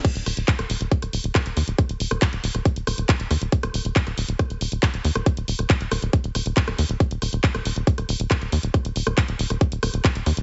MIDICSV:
0, 0, Header, 1, 3, 480
1, 0, Start_track
1, 0, Tempo, 434783
1, 51, Time_signature, 4, 2, 24, 8
1, 11511, End_track
2, 0, Start_track
2, 0, Title_t, "Analog synth bass"
2, 0, Program_c, 0, 38
2, 170, Note_on_c, 0, 27, 90
2, 242, Note_off_c, 0, 27, 0
2, 290, Note_on_c, 0, 27, 100
2, 362, Note_off_c, 0, 27, 0
2, 410, Note_on_c, 0, 27, 89
2, 482, Note_off_c, 0, 27, 0
2, 650, Note_on_c, 0, 27, 89
2, 722, Note_off_c, 0, 27, 0
2, 770, Note_on_c, 0, 27, 101
2, 842, Note_off_c, 0, 27, 0
2, 890, Note_on_c, 0, 27, 91
2, 962, Note_off_c, 0, 27, 0
2, 1130, Note_on_c, 0, 27, 89
2, 1202, Note_off_c, 0, 27, 0
2, 1250, Note_on_c, 0, 27, 99
2, 1322, Note_off_c, 0, 27, 0
2, 1370, Note_on_c, 0, 27, 89
2, 1442, Note_off_c, 0, 27, 0
2, 1610, Note_on_c, 0, 27, 82
2, 1682, Note_off_c, 0, 27, 0
2, 1730, Note_on_c, 0, 39, 97
2, 1802, Note_off_c, 0, 39, 0
2, 1850, Note_on_c, 0, 27, 90
2, 1922, Note_off_c, 0, 27, 0
2, 2090, Note_on_c, 0, 27, 87
2, 2162, Note_off_c, 0, 27, 0
2, 2210, Note_on_c, 0, 27, 95
2, 2282, Note_off_c, 0, 27, 0
2, 2330, Note_on_c, 0, 27, 89
2, 2402, Note_off_c, 0, 27, 0
2, 2570, Note_on_c, 0, 27, 88
2, 2642, Note_off_c, 0, 27, 0
2, 2690, Note_on_c, 0, 27, 105
2, 2762, Note_off_c, 0, 27, 0
2, 2810, Note_on_c, 0, 27, 96
2, 2882, Note_off_c, 0, 27, 0
2, 3050, Note_on_c, 0, 27, 83
2, 3122, Note_off_c, 0, 27, 0
2, 3170, Note_on_c, 0, 27, 100
2, 3242, Note_off_c, 0, 27, 0
2, 3290, Note_on_c, 0, 27, 90
2, 3362, Note_off_c, 0, 27, 0
2, 3529, Note_on_c, 0, 27, 81
2, 3601, Note_off_c, 0, 27, 0
2, 3650, Note_on_c, 0, 39, 103
2, 3722, Note_off_c, 0, 39, 0
2, 3770, Note_on_c, 0, 27, 92
2, 3842, Note_off_c, 0, 27, 0
2, 4010, Note_on_c, 0, 27, 93
2, 4082, Note_off_c, 0, 27, 0
2, 4130, Note_on_c, 0, 27, 98
2, 4202, Note_off_c, 0, 27, 0
2, 4250, Note_on_c, 0, 27, 91
2, 4322, Note_off_c, 0, 27, 0
2, 4490, Note_on_c, 0, 27, 94
2, 4562, Note_off_c, 0, 27, 0
2, 4610, Note_on_c, 0, 27, 106
2, 4682, Note_off_c, 0, 27, 0
2, 4730, Note_on_c, 0, 27, 90
2, 4802, Note_off_c, 0, 27, 0
2, 4970, Note_on_c, 0, 27, 86
2, 5042, Note_off_c, 0, 27, 0
2, 5090, Note_on_c, 0, 27, 104
2, 5162, Note_off_c, 0, 27, 0
2, 5210, Note_on_c, 0, 27, 88
2, 5282, Note_off_c, 0, 27, 0
2, 5450, Note_on_c, 0, 27, 83
2, 5522, Note_off_c, 0, 27, 0
2, 5570, Note_on_c, 0, 39, 102
2, 5642, Note_off_c, 0, 39, 0
2, 5690, Note_on_c, 0, 27, 93
2, 5762, Note_off_c, 0, 27, 0
2, 5930, Note_on_c, 0, 27, 91
2, 6002, Note_off_c, 0, 27, 0
2, 6050, Note_on_c, 0, 27, 96
2, 6122, Note_off_c, 0, 27, 0
2, 6171, Note_on_c, 0, 27, 86
2, 6242, Note_off_c, 0, 27, 0
2, 6410, Note_on_c, 0, 27, 89
2, 6482, Note_off_c, 0, 27, 0
2, 6531, Note_on_c, 0, 27, 100
2, 6602, Note_off_c, 0, 27, 0
2, 6650, Note_on_c, 0, 27, 94
2, 6722, Note_off_c, 0, 27, 0
2, 6890, Note_on_c, 0, 27, 90
2, 6962, Note_off_c, 0, 27, 0
2, 7010, Note_on_c, 0, 27, 98
2, 7082, Note_off_c, 0, 27, 0
2, 7130, Note_on_c, 0, 27, 92
2, 7202, Note_off_c, 0, 27, 0
2, 7370, Note_on_c, 0, 27, 80
2, 7442, Note_off_c, 0, 27, 0
2, 7491, Note_on_c, 0, 39, 95
2, 7562, Note_off_c, 0, 39, 0
2, 7611, Note_on_c, 0, 27, 91
2, 7682, Note_off_c, 0, 27, 0
2, 7850, Note_on_c, 0, 27, 93
2, 7922, Note_off_c, 0, 27, 0
2, 7971, Note_on_c, 0, 27, 96
2, 8042, Note_off_c, 0, 27, 0
2, 8091, Note_on_c, 0, 27, 93
2, 8162, Note_off_c, 0, 27, 0
2, 8330, Note_on_c, 0, 27, 92
2, 8402, Note_off_c, 0, 27, 0
2, 8450, Note_on_c, 0, 27, 107
2, 8522, Note_off_c, 0, 27, 0
2, 8570, Note_on_c, 0, 27, 92
2, 8642, Note_off_c, 0, 27, 0
2, 8811, Note_on_c, 0, 27, 91
2, 8882, Note_off_c, 0, 27, 0
2, 8930, Note_on_c, 0, 27, 105
2, 9002, Note_off_c, 0, 27, 0
2, 9050, Note_on_c, 0, 27, 89
2, 9122, Note_off_c, 0, 27, 0
2, 9290, Note_on_c, 0, 27, 83
2, 9362, Note_off_c, 0, 27, 0
2, 9410, Note_on_c, 0, 39, 101
2, 9482, Note_off_c, 0, 39, 0
2, 9530, Note_on_c, 0, 27, 90
2, 9602, Note_off_c, 0, 27, 0
2, 9770, Note_on_c, 0, 27, 94
2, 9842, Note_off_c, 0, 27, 0
2, 9890, Note_on_c, 0, 27, 99
2, 9962, Note_off_c, 0, 27, 0
2, 10010, Note_on_c, 0, 27, 91
2, 10082, Note_off_c, 0, 27, 0
2, 10250, Note_on_c, 0, 27, 92
2, 10322, Note_off_c, 0, 27, 0
2, 10370, Note_on_c, 0, 27, 100
2, 10442, Note_off_c, 0, 27, 0
2, 10490, Note_on_c, 0, 27, 91
2, 10562, Note_off_c, 0, 27, 0
2, 10730, Note_on_c, 0, 27, 90
2, 10802, Note_off_c, 0, 27, 0
2, 10850, Note_on_c, 0, 27, 101
2, 10922, Note_off_c, 0, 27, 0
2, 10970, Note_on_c, 0, 27, 91
2, 11042, Note_off_c, 0, 27, 0
2, 11210, Note_on_c, 0, 27, 81
2, 11282, Note_off_c, 0, 27, 0
2, 11330, Note_on_c, 0, 39, 104
2, 11402, Note_off_c, 0, 39, 0
2, 11450, Note_on_c, 0, 27, 89
2, 11511, Note_off_c, 0, 27, 0
2, 11511, End_track
3, 0, Start_track
3, 0, Title_t, "Drums"
3, 50, Note_on_c, 9, 36, 116
3, 50, Note_on_c, 9, 42, 74
3, 50, Note_on_c, 9, 49, 89
3, 161, Note_off_c, 9, 36, 0
3, 161, Note_off_c, 9, 42, 0
3, 161, Note_off_c, 9, 49, 0
3, 170, Note_on_c, 9, 42, 57
3, 281, Note_off_c, 9, 42, 0
3, 290, Note_on_c, 9, 37, 35
3, 290, Note_on_c, 9, 46, 104
3, 401, Note_off_c, 9, 37, 0
3, 401, Note_off_c, 9, 46, 0
3, 410, Note_on_c, 9, 42, 54
3, 521, Note_off_c, 9, 42, 0
3, 530, Note_on_c, 9, 36, 119
3, 530, Note_on_c, 9, 39, 121
3, 530, Note_on_c, 9, 42, 85
3, 641, Note_off_c, 9, 36, 0
3, 641, Note_off_c, 9, 39, 0
3, 641, Note_off_c, 9, 42, 0
3, 650, Note_on_c, 9, 37, 78
3, 650, Note_on_c, 9, 42, 54
3, 761, Note_off_c, 9, 37, 0
3, 761, Note_off_c, 9, 42, 0
3, 770, Note_on_c, 9, 46, 90
3, 881, Note_off_c, 9, 46, 0
3, 890, Note_on_c, 9, 42, 52
3, 1001, Note_off_c, 9, 42, 0
3, 1010, Note_on_c, 9, 36, 123
3, 1010, Note_on_c, 9, 42, 82
3, 1121, Note_off_c, 9, 36, 0
3, 1121, Note_off_c, 9, 42, 0
3, 1130, Note_on_c, 9, 37, 38
3, 1130, Note_on_c, 9, 42, 57
3, 1241, Note_off_c, 9, 37, 0
3, 1241, Note_off_c, 9, 42, 0
3, 1250, Note_on_c, 9, 46, 104
3, 1361, Note_off_c, 9, 46, 0
3, 1370, Note_on_c, 9, 42, 54
3, 1481, Note_off_c, 9, 42, 0
3, 1490, Note_on_c, 9, 36, 119
3, 1491, Note_on_c, 9, 37, 77
3, 1491, Note_on_c, 9, 39, 127
3, 1491, Note_on_c, 9, 42, 81
3, 1601, Note_off_c, 9, 36, 0
3, 1601, Note_off_c, 9, 37, 0
3, 1601, Note_off_c, 9, 39, 0
3, 1601, Note_off_c, 9, 42, 0
3, 1610, Note_on_c, 9, 42, 57
3, 1721, Note_off_c, 9, 42, 0
3, 1730, Note_on_c, 9, 46, 87
3, 1841, Note_off_c, 9, 46, 0
3, 1851, Note_on_c, 9, 42, 55
3, 1961, Note_off_c, 9, 42, 0
3, 1970, Note_on_c, 9, 36, 125
3, 1971, Note_on_c, 9, 37, 36
3, 1971, Note_on_c, 9, 42, 73
3, 2081, Note_off_c, 9, 36, 0
3, 2081, Note_off_c, 9, 37, 0
3, 2081, Note_off_c, 9, 42, 0
3, 2091, Note_on_c, 9, 42, 56
3, 2201, Note_off_c, 9, 42, 0
3, 2210, Note_on_c, 9, 46, 102
3, 2321, Note_off_c, 9, 46, 0
3, 2331, Note_on_c, 9, 37, 74
3, 2331, Note_on_c, 9, 42, 52
3, 2441, Note_off_c, 9, 37, 0
3, 2441, Note_off_c, 9, 42, 0
3, 2450, Note_on_c, 9, 36, 127
3, 2450, Note_on_c, 9, 39, 120
3, 2450, Note_on_c, 9, 42, 75
3, 2561, Note_off_c, 9, 36, 0
3, 2561, Note_off_c, 9, 39, 0
3, 2561, Note_off_c, 9, 42, 0
3, 2570, Note_on_c, 9, 42, 55
3, 2681, Note_off_c, 9, 42, 0
3, 2690, Note_on_c, 9, 46, 96
3, 2801, Note_off_c, 9, 46, 0
3, 2810, Note_on_c, 9, 37, 38
3, 2810, Note_on_c, 9, 42, 50
3, 2921, Note_off_c, 9, 37, 0
3, 2921, Note_off_c, 9, 42, 0
3, 2930, Note_on_c, 9, 36, 125
3, 2930, Note_on_c, 9, 42, 79
3, 3041, Note_off_c, 9, 36, 0
3, 3041, Note_off_c, 9, 42, 0
3, 3051, Note_on_c, 9, 42, 53
3, 3161, Note_off_c, 9, 42, 0
3, 3171, Note_on_c, 9, 37, 72
3, 3171, Note_on_c, 9, 46, 104
3, 3281, Note_off_c, 9, 37, 0
3, 3281, Note_off_c, 9, 46, 0
3, 3291, Note_on_c, 9, 42, 54
3, 3401, Note_off_c, 9, 42, 0
3, 3410, Note_on_c, 9, 36, 120
3, 3411, Note_on_c, 9, 39, 123
3, 3411, Note_on_c, 9, 42, 82
3, 3521, Note_off_c, 9, 36, 0
3, 3521, Note_off_c, 9, 39, 0
3, 3521, Note_off_c, 9, 42, 0
3, 3531, Note_on_c, 9, 42, 51
3, 3641, Note_off_c, 9, 42, 0
3, 3650, Note_on_c, 9, 37, 36
3, 3650, Note_on_c, 9, 46, 89
3, 3761, Note_off_c, 9, 37, 0
3, 3761, Note_off_c, 9, 46, 0
3, 3771, Note_on_c, 9, 42, 52
3, 3881, Note_off_c, 9, 42, 0
3, 3890, Note_on_c, 9, 36, 125
3, 3890, Note_on_c, 9, 42, 76
3, 4001, Note_off_c, 9, 36, 0
3, 4001, Note_off_c, 9, 42, 0
3, 4010, Note_on_c, 9, 37, 82
3, 4010, Note_on_c, 9, 42, 55
3, 4121, Note_off_c, 9, 37, 0
3, 4121, Note_off_c, 9, 42, 0
3, 4131, Note_on_c, 9, 46, 101
3, 4241, Note_off_c, 9, 46, 0
3, 4251, Note_on_c, 9, 42, 51
3, 4361, Note_off_c, 9, 42, 0
3, 4370, Note_on_c, 9, 36, 126
3, 4371, Note_on_c, 9, 39, 122
3, 4371, Note_on_c, 9, 42, 75
3, 4481, Note_off_c, 9, 36, 0
3, 4481, Note_off_c, 9, 39, 0
3, 4481, Note_off_c, 9, 42, 0
3, 4490, Note_on_c, 9, 37, 40
3, 4490, Note_on_c, 9, 42, 53
3, 4601, Note_off_c, 9, 37, 0
3, 4601, Note_off_c, 9, 42, 0
3, 4610, Note_on_c, 9, 46, 96
3, 4721, Note_off_c, 9, 46, 0
3, 4730, Note_on_c, 9, 42, 51
3, 4841, Note_off_c, 9, 42, 0
3, 4850, Note_on_c, 9, 36, 127
3, 4850, Note_on_c, 9, 37, 76
3, 4850, Note_on_c, 9, 42, 74
3, 4961, Note_off_c, 9, 36, 0
3, 4961, Note_off_c, 9, 37, 0
3, 4961, Note_off_c, 9, 42, 0
3, 4971, Note_on_c, 9, 42, 49
3, 5081, Note_off_c, 9, 42, 0
3, 5090, Note_on_c, 9, 46, 108
3, 5201, Note_off_c, 9, 46, 0
3, 5211, Note_on_c, 9, 42, 52
3, 5321, Note_off_c, 9, 42, 0
3, 5330, Note_on_c, 9, 36, 127
3, 5331, Note_on_c, 9, 37, 40
3, 5331, Note_on_c, 9, 39, 120
3, 5331, Note_on_c, 9, 42, 73
3, 5441, Note_off_c, 9, 36, 0
3, 5441, Note_off_c, 9, 37, 0
3, 5441, Note_off_c, 9, 39, 0
3, 5441, Note_off_c, 9, 42, 0
3, 5451, Note_on_c, 9, 42, 50
3, 5561, Note_off_c, 9, 42, 0
3, 5570, Note_on_c, 9, 46, 92
3, 5681, Note_off_c, 9, 46, 0
3, 5690, Note_on_c, 9, 37, 76
3, 5690, Note_on_c, 9, 42, 53
3, 5801, Note_off_c, 9, 37, 0
3, 5801, Note_off_c, 9, 42, 0
3, 5810, Note_on_c, 9, 36, 126
3, 5811, Note_on_c, 9, 42, 70
3, 5921, Note_off_c, 9, 36, 0
3, 5921, Note_off_c, 9, 42, 0
3, 5931, Note_on_c, 9, 42, 53
3, 6041, Note_off_c, 9, 42, 0
3, 6051, Note_on_c, 9, 46, 105
3, 6161, Note_off_c, 9, 46, 0
3, 6170, Note_on_c, 9, 37, 39
3, 6170, Note_on_c, 9, 42, 52
3, 6281, Note_off_c, 9, 37, 0
3, 6281, Note_off_c, 9, 42, 0
3, 6290, Note_on_c, 9, 36, 126
3, 6290, Note_on_c, 9, 39, 112
3, 6290, Note_on_c, 9, 42, 76
3, 6401, Note_off_c, 9, 36, 0
3, 6401, Note_off_c, 9, 39, 0
3, 6401, Note_off_c, 9, 42, 0
3, 6410, Note_on_c, 9, 42, 50
3, 6521, Note_off_c, 9, 42, 0
3, 6530, Note_on_c, 9, 37, 81
3, 6530, Note_on_c, 9, 46, 95
3, 6641, Note_off_c, 9, 37, 0
3, 6641, Note_off_c, 9, 46, 0
3, 6650, Note_on_c, 9, 42, 52
3, 6761, Note_off_c, 9, 42, 0
3, 6770, Note_on_c, 9, 36, 123
3, 6770, Note_on_c, 9, 42, 72
3, 6881, Note_off_c, 9, 36, 0
3, 6881, Note_off_c, 9, 42, 0
3, 6890, Note_on_c, 9, 42, 51
3, 7001, Note_off_c, 9, 42, 0
3, 7010, Note_on_c, 9, 37, 38
3, 7010, Note_on_c, 9, 46, 111
3, 7121, Note_off_c, 9, 37, 0
3, 7121, Note_off_c, 9, 46, 0
3, 7130, Note_on_c, 9, 42, 48
3, 7241, Note_off_c, 9, 42, 0
3, 7250, Note_on_c, 9, 36, 126
3, 7250, Note_on_c, 9, 39, 116
3, 7250, Note_on_c, 9, 42, 76
3, 7361, Note_off_c, 9, 36, 0
3, 7361, Note_off_c, 9, 39, 0
3, 7361, Note_off_c, 9, 42, 0
3, 7370, Note_on_c, 9, 37, 84
3, 7370, Note_on_c, 9, 42, 47
3, 7481, Note_off_c, 9, 37, 0
3, 7481, Note_off_c, 9, 42, 0
3, 7490, Note_on_c, 9, 46, 91
3, 7601, Note_off_c, 9, 46, 0
3, 7610, Note_on_c, 9, 42, 51
3, 7721, Note_off_c, 9, 42, 0
3, 7730, Note_on_c, 9, 36, 122
3, 7730, Note_on_c, 9, 42, 73
3, 7841, Note_off_c, 9, 36, 0
3, 7841, Note_off_c, 9, 42, 0
3, 7851, Note_on_c, 9, 42, 54
3, 7961, Note_off_c, 9, 42, 0
3, 7970, Note_on_c, 9, 37, 39
3, 7970, Note_on_c, 9, 46, 97
3, 8081, Note_off_c, 9, 37, 0
3, 8081, Note_off_c, 9, 46, 0
3, 8090, Note_on_c, 9, 42, 52
3, 8201, Note_off_c, 9, 42, 0
3, 8210, Note_on_c, 9, 36, 126
3, 8211, Note_on_c, 9, 39, 114
3, 8211, Note_on_c, 9, 42, 72
3, 8321, Note_off_c, 9, 36, 0
3, 8321, Note_off_c, 9, 39, 0
3, 8321, Note_off_c, 9, 42, 0
3, 8330, Note_on_c, 9, 37, 85
3, 8330, Note_on_c, 9, 42, 52
3, 8441, Note_off_c, 9, 37, 0
3, 8441, Note_off_c, 9, 42, 0
3, 8450, Note_on_c, 9, 46, 96
3, 8561, Note_off_c, 9, 46, 0
3, 8570, Note_on_c, 9, 42, 48
3, 8681, Note_off_c, 9, 42, 0
3, 8690, Note_on_c, 9, 36, 123
3, 8690, Note_on_c, 9, 42, 74
3, 8801, Note_off_c, 9, 36, 0
3, 8801, Note_off_c, 9, 42, 0
3, 8810, Note_on_c, 9, 37, 43
3, 8810, Note_on_c, 9, 42, 50
3, 8921, Note_off_c, 9, 37, 0
3, 8921, Note_off_c, 9, 42, 0
3, 8930, Note_on_c, 9, 46, 103
3, 9040, Note_off_c, 9, 46, 0
3, 9050, Note_on_c, 9, 42, 52
3, 9161, Note_off_c, 9, 42, 0
3, 9170, Note_on_c, 9, 36, 120
3, 9170, Note_on_c, 9, 37, 82
3, 9170, Note_on_c, 9, 39, 115
3, 9170, Note_on_c, 9, 42, 77
3, 9281, Note_off_c, 9, 36, 0
3, 9281, Note_off_c, 9, 37, 0
3, 9281, Note_off_c, 9, 39, 0
3, 9281, Note_off_c, 9, 42, 0
3, 9290, Note_on_c, 9, 42, 51
3, 9401, Note_off_c, 9, 42, 0
3, 9410, Note_on_c, 9, 46, 86
3, 9520, Note_off_c, 9, 46, 0
3, 9530, Note_on_c, 9, 42, 51
3, 9641, Note_off_c, 9, 42, 0
3, 9650, Note_on_c, 9, 36, 112
3, 9650, Note_on_c, 9, 37, 40
3, 9650, Note_on_c, 9, 42, 74
3, 9761, Note_off_c, 9, 36, 0
3, 9761, Note_off_c, 9, 37, 0
3, 9761, Note_off_c, 9, 42, 0
3, 9770, Note_on_c, 9, 42, 56
3, 9880, Note_off_c, 9, 42, 0
3, 9890, Note_on_c, 9, 46, 92
3, 10000, Note_off_c, 9, 46, 0
3, 10010, Note_on_c, 9, 37, 82
3, 10010, Note_on_c, 9, 42, 53
3, 10120, Note_off_c, 9, 37, 0
3, 10120, Note_off_c, 9, 42, 0
3, 10130, Note_on_c, 9, 36, 115
3, 10130, Note_on_c, 9, 39, 106
3, 10130, Note_on_c, 9, 42, 75
3, 10240, Note_off_c, 9, 39, 0
3, 10240, Note_off_c, 9, 42, 0
3, 10241, Note_off_c, 9, 36, 0
3, 10250, Note_on_c, 9, 42, 53
3, 10360, Note_off_c, 9, 42, 0
3, 10370, Note_on_c, 9, 46, 86
3, 10480, Note_off_c, 9, 46, 0
3, 10490, Note_on_c, 9, 37, 43
3, 10490, Note_on_c, 9, 42, 50
3, 10600, Note_off_c, 9, 37, 0
3, 10600, Note_off_c, 9, 42, 0
3, 10610, Note_on_c, 9, 36, 120
3, 10610, Note_on_c, 9, 42, 76
3, 10721, Note_off_c, 9, 36, 0
3, 10721, Note_off_c, 9, 42, 0
3, 10730, Note_on_c, 9, 42, 54
3, 10840, Note_off_c, 9, 42, 0
3, 10850, Note_on_c, 9, 37, 83
3, 10850, Note_on_c, 9, 46, 99
3, 10961, Note_off_c, 9, 37, 0
3, 10961, Note_off_c, 9, 46, 0
3, 10970, Note_on_c, 9, 42, 52
3, 11081, Note_off_c, 9, 42, 0
3, 11090, Note_on_c, 9, 36, 115
3, 11090, Note_on_c, 9, 39, 115
3, 11090, Note_on_c, 9, 42, 82
3, 11201, Note_off_c, 9, 36, 0
3, 11201, Note_off_c, 9, 39, 0
3, 11201, Note_off_c, 9, 42, 0
3, 11210, Note_on_c, 9, 42, 51
3, 11321, Note_off_c, 9, 42, 0
3, 11330, Note_on_c, 9, 37, 38
3, 11330, Note_on_c, 9, 46, 83
3, 11441, Note_off_c, 9, 37, 0
3, 11441, Note_off_c, 9, 46, 0
3, 11450, Note_on_c, 9, 42, 55
3, 11511, Note_off_c, 9, 42, 0
3, 11511, End_track
0, 0, End_of_file